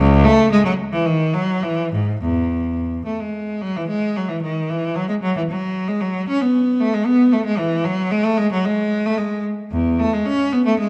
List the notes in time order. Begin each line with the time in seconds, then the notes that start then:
Already playing: C#2
0.24 A3
0.51 G#3
0.64 F#3
0.92 E3
1.06 D#3
1.33 F#3
1.62 E3
1.92 G#2
2.21 E2
3.05 A3
3.20 G#3
3.61 F#3
3.76 E3
3.88 G#3
4.16 F#3
4.28 E3
4.42 D#3
4.70 E3
4.95 F#3
5.09 G#3
5.22 F#3
5.37 E3
5.50 F#3
5.88 G#3
6.01 F#3
6.28 C#4
6.41 B3
6.80 A3
6.94 G#3
7.06 B3
7.32 A3
7.45 G#3
7.58 E3
7.84 F#3
8.11 G#3
8.24 A3
8.37 G#3
8.52 F#3
8.65 G#3
9.06 A3
9.17 G#3
9.72 E2
9.99 A3
10.13 G#3
10.26 C#4
10.52 B3
10.65 A3
10.79 G#3